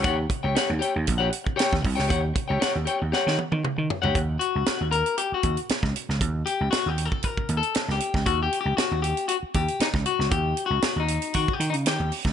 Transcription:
<<
  \new Staff \with { instrumentName = "Clean electric guitar" } { \time 4/4 \key ees \mixolydian \tempo 4 = 117 <g' des'' fis''>16 r8 <g' des'' g''>16 <g' des'' fis''>16 r16 <g' des'' g''>16 r8 <g' des'' fis''>16 r8 <g' des'' g''>16 r8 <g' des'' g''>16 | <g' des'' fis''>16 r8 <g' des'' g''>16 <g' des'' fis''>16 r16 <g' des'' g''>16 r16 <g' des'' fis''>8 r4 r16 <g' des'' fis''>16 | r8 ges'4 bes'8 \tuplet 3/2 { g'8 ges'8. r16 } r4 | r8 g'8 \tuplet 3/2 { ges'8 g'8 a'8 bes'4 a'8~ a'8 g'4 } |
\tuplet 3/2 { ges'8 g'8 g'8 } ges'8 g'8 ges'8 g'8 ees'8 ges'8 | \tuplet 3/2 { g'4 ges'8~ ges'8 ees'4 ges'8 g'8 ees'8 } g'8 r8 | }
  \new Staff \with { instrumentName = "Slap bass" } { \clef bass \time 4/4 \key ees \mixolydian ees,8 r16 des,16 r16 ees,16 r16 ees,16 bes,,8 r8. ees,16 c,16 des,16 | ees,8 r16 des,16 r16 ees,16 r16 ees,16 r16 ees16 r16 ees16 r16 ees16 r16 des,16 | ees,8 r16 des,16 r16 ees,8 r8. ees,16 r8 des,16 r16 des,16 | ees,8 r16 des,16 r16 ees,8 r8. ees,16 r8 des,16 r16 des,16 |
ees,8 r16 des,16 r16 ees,8 r8. ees,16 r8 des,16 r16 des,16 | ees,8 r16 des,16 r16 ees,8 r16 ees16 r16 ees16 des16 ees16 ees,16 r16 des,16 | }
  \new DrumStaff \with { instrumentName = "Drums" } \drummode { \time 4/4 <hh bd>8 <hh bd>8 <hh sn>8 hh8 <hh bd>8 hh16 bd16 <hh sn>16 <bd sn>16 <hho bd>16 sn16 | <hh bd>8 <hh bd>8 <hh sn>8 hh8 sn16 sn16 tommh16 tommh16 toml8 tomfh16 tomfh16 | <hh bd>8 hh8 <hh sn>8 hh16 hh16 hh8 <hh bd>16 hh16 <hh sn>16 <bd sn>16 hh16 sn16 | <hh bd>8 hh8 <hh sn>8 hh16 bd16 <hh bd>16 bd16 hh16 hh16 <hh sn>16 sn16 hh16 <bd sn>16 |
<hh bd>8 hh8 <hh sn>8 hh16 hh16 hh8 <hh bd>16 hh16 <hh sn>16 <bd sn>16 hh16 sn16 | <hh bd>8 hh8 <hh sn>8 hh16 hh16 <hh bd>16 bd16 hh16 hh16 <hh sn>8 hho16 <bd sn>16 | }
>>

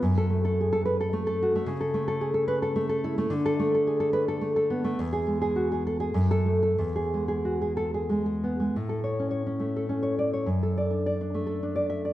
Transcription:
\new Staff \with { instrumentName = "Nylon-string guitar" } { \time 3/4 \key fis \minor \tempo 4 = 106 << { r4. b'16 r4 r16 | \key a \major r4. b'16 r4 r16 | r4. b'16 r4 r16 | r4. a'16 r8 a'8 r16 |
r4. a'16 r4 r16 | r2 r8 d''16 r16 | r2 r8 e''16 r16 | } \\ { fis,16 a'16 a16 a'16 gis'16 a'8 a'16 a16 a'16 fis'16 a16 | cis16 a'16 a16 a'16 gis'16 a'8 a'16 a16 a'16 e'16 a16 | d16 a'16 a16 a'16 gis'16 a'8 a'16 a16 a'16 b16 a16 | e,16 gis'16 gis16 gis'16 fis'16 gis'8 gis'16 fis,8 a16 a'16 |
e,16 gis'16 gis16 gis'16 fis'16 gis'8 gis'16 gis16 gis'16 b16 gis16 | a,16 a'16 cis''16 cis'16 cis''16 cis'16 a16 a'16 cis'16 cis''8 cis''16 | fis,16 a'16 d''16 d'16 d''16 d'16 a16 a'16 d'16 d''8 d''16 | } >> }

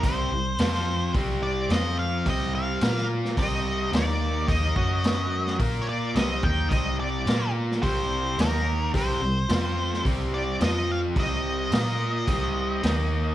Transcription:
<<
  \new Staff \with { instrumentName = "Lead electric guitar" } { \time 4/4 \key c \minor \tempo 4 = 108 c''2 r8 d''8 ees''8 f''8 | ees''8 f''4 r8 ees''4 d''4 | ees''2 r16. des''32 d''8 ees''8 g''8 | ees''8 d''4 r8 c''4 bes'4 |
c''2 r8 d''8 ees''8 f''8 | ees''1 | }
  \new Staff \with { instrumentName = "Overdriven electric guitar" } { \time 4/4 \key c \minor <c g c'>8 <c g>8 <f c' f'>4 <c g c'>4 <f c' f'>4 | <c g c'>4 <bes f' bes'>4 <c g c'>4 <ees bes ees'>4 | <ees bes ees'>8 <fis cis' fis'>4. <bes f' bes'>4 <c g c'>8 <ees bes ees'>8 | <c g c'>4 <bes f' bes'>4 <c g c'>4 <ees bes ees'>4 |
<c g c'>8 <c g>8 <f c' f'>4 <c g c'>4 <f c' f'>4 | <c g c'>4 <bes f' bes'>4 <c g c'>4 <ees bes ees'>4 | }
  \new Staff \with { instrumentName = "Fingered electric bass" } { \clef bass \time 4/4 \key c \minor c,8 c,8 f,4 c,4 f,4 | c,4 bes,4 c,4 ees,4 | ees,8 fis,4. bes,4 c,8 ees,8 | c,4 bes,4 c,4 ees,4 |
c,8 c,8 f,4 c,4 f,4 | c,4 bes,4 c,4 ees,4 | }
  \new DrumStaff \with { instrumentName = "Drums" } \drummode { \time 4/4 <hho bd>4 <hho sn>16 sn8. <hho bd>4 <hho sn>4 | <hho bd>4 <hho sn>16 sn8 sn16 <hho bd>4 <hho sn>4 | <hho bd>8 bd8 <hho sn>8. sn16 <hho bd>4 <hho sn>8 bd8 | <hho bd>4 <hho sn>8. sn16 <hho bd>4 <hho sn>4 |
<hho bd>4 <hho sn>8. sn16 <hho bd>4 <hho sn>4 | <hho bd>4 <hho sn>4 <hho bd>4 <hho sn>4 | }
>>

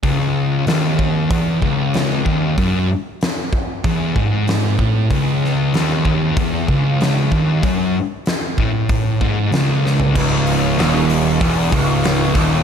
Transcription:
<<
  \new Staff \with { instrumentName = "Distorted electric guitar" } { \clef bass \time 4/4 \key cis \minor \tempo 4 = 95 cis,4 dis,4 e,8 cis,4 dis,8 | fis,8 r4. e,8 gis,4 a,8 | cis,4 dis,4 e,8 cis,4 dis,8 | fis,8 r4 a,4 gis,8 cis,4 |
cis,4 dis,4 e,8 cis,4 dis,8 | }
  \new Staff \with { instrumentName = "Distorted electric guitar" } { \clef bass \time 4/4 \key cis \minor cis,4 dis,4 e,8 cis,4 dis,8 | fis,8 r4. e,8 gis,4 a,8 | cis,4 dis,4 e,8 cis,4 dis,8 | fis,8 r4 a,4 gis,8 cis,4 |
cis,4 dis,4 e,8 cis,4 dis,8 | }
  \new Staff \with { instrumentName = "Distorted electric guitar" } { \clef bass \time 4/4 \key cis \minor r1 | r1 | r1 | r1 |
cis,4 dis,4 e,8 cis,4 dis,8 | }
  \new Staff \with { instrumentName = "Picked electric bass" } { \clef bass \time 4/4 \key cis \minor r1 | r1 | r1 | r1 |
cis,,4 dis,,4 e,,8 cis,,4 dis,,8 | }
  \new DrumStaff \with { instrumentName = "Drums" } \drummode { \time 4/4 <hho bd>4 <hho sn>8 bd8 <hho bd>8 bd8 <hho sn>8 bd8 | <hho bd>4 <hho sn>8 bd8 <hho bd>8 bd8 <hho sn>8 bd8 | <hho bd>8 sn8 <hho sn>8 bd8 <hho bd>8 bd8 <hho sn>8 bd8 | <hho bd>4 <hho sn>8 bd8 <hho bd>8 bd8 <hho sn>8 sn16 tomfh16 |
<cymc bd>8 hho8 <hho sn>8 hho8 <hho bd>8 <hho bd>8 <hho sn>8 <hho bd>8 | }
>>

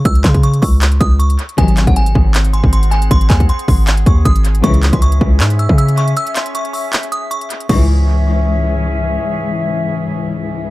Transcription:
<<
  \new Staff \with { instrumentName = "Synth bell" } { \time 4/4 \key cis \minor \tempo 4 = 157 e'''8 bis''8 cis'''8 cis'''4 dis'''8 cis'''4 | gis''8. fis''16 gis''4 r8 bis''8 bis''8 gis''8 | bis''8 gis''8 bis''8 bis''4 cis'''8 dis'''8 r8 | cis'''8. bis''16 cis'''4 r8 e'''8 e'''8 cis'''8 |
e'''8 bis''8 cis'''8 cis'''4 dis'''8 cis'''4 | cis'''2. r4 | r1 | }
  \new Staff \with { instrumentName = "Flute section" } { \time 4/4 \key cis \minor << { r1 | <bis fis''>1~ | <bis fis''>1 | <cis' e''>1~ |
<cis' e''>1 | <cis' gis' e''>1~ | <cis' gis' e''>1 | } \\ { r1 | gis'1~ | gis'1~ | gis'1~ |
gis'1 | r1 | r1 | } >> }
  \new Staff \with { instrumentName = "String section" } { \clef bass \time 4/4 \key cis \minor r1 | <bis, dis fis>8. r2. r16 | r1 | <gis, cis e>8. r2. r16 |
r1 | <cis, gis, e>1~ | <cis, gis, e>1 | }
  \new Staff \with { instrumentName = "808-style bass" } { \clef bass \time 4/4 \key cis \minor cis,8 cis4 cis,4 cis,4 r8 | gis,,8. gis,,8. gis,,4~ gis,,16 gis,,4~ gis,,16 | gis,,8 dis,8 r8 gis,,4 dis,8 gis,,4 | cis,8. cis,8. cis,8 gis,8. cis4~ cis16 |
r1 | cis,1 | r1 | }
  \new DrumStaff \with { instrumentName = "Drums" } \drummode { \time 4/4 <hh bd>16 hh16 <hc hh bd>16 <hh bd>16 hh16 hh16 <hho bd>8 <hc hh>16 hh16 <hh bd>8 hh16 hh16 hh16 hh16 | <hh bd>16 hh16 <hc hh>16 <hh bd>16 hh16 hh16 bd8 <hc hh>16 hh16 hh16 bd16 hh16 hh16 hh16 hh16 | <hh bd>16 hh16 <hc hh bd>16 <hh bd>16 hh16 hh16 <hho bd>8 <hc hh>16 hh16 <hh bd>8 <hh bd>16 hh16 hh16 hh16 | <hh bd>16 hh16 <hc hh>16 <hh bd>16 hh16 hh16 bd8 <hc hh>16 hh16 hh16 bd16 hh16 hh16 hh16 hh16 |
hh16 hh16 <hc hh>16 hh16 hh16 hh16 hho8 <hc hh>16 hh16 hh8 hh16 hh16 hh16 hh16 | <cymc bd>4 r4 r4 r4 | r4 r4 r4 r4 | }
>>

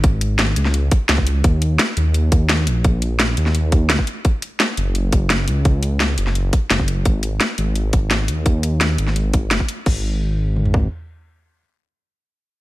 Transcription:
<<
  \new Staff \with { instrumentName = "Detuned saw bass" } { \clef bass \time 4/4 \key fis \major \tempo 4 = 171 gis,,4. cis,4 r8 cis,4 | dis,4 r8 dis,4 dis,4 ais,,8~ | ais,,4. dis,4. cis,8 r8 | r4. fis,,4 fis,,4 cis,8~ |
cis,4. fis,,4 r8 fis,,4 | gis,,4 r8 gis,,4 gis,,4 dis,8~ | dis,4. gis,,4. fis,,8 r8 | gis,,2. r4 |
r1 | }
  \new DrumStaff \with { instrumentName = "Drums" } \drummode { \time 4/4 <hh bd>8 hh8 <hh sn>8 hh16 sn16 hh8 <hh bd>8 <hh sn>16 bd16 hh8 | <hh bd>8 hh8 <hh sn>8 hh8 hh8 <hh bd>8 <hh sn>8 hh8 | <hh bd>8 hh8 <hh sn>8 hh16 sn16 hh8 <hh bd>8 <hh sn>16 bd16 hh8 | <hh bd>8 hh8 <hh sn>8 hh8 hh8 <hh bd>8 <hh sn>8 hh8 |
<hh bd>8 hh8 <hh sn>8 hh16 sn16 hh8 <hh bd>8 <hh sn>16 bd16 hh8 | <hh bd>8 hh8 <hh sn>8 hh8 hh8 <hh bd>8 <hh sn>8 hh8 | <hh bd>8 hh8 <hh sn>8 hh16 sn16 hh8 <hh bd>8 <hh sn>16 bd16 hh8 | <cymc bd>4 r4 toml16 tomfh16 bd8 r4 |
r4 r4 r4 r4 | }
>>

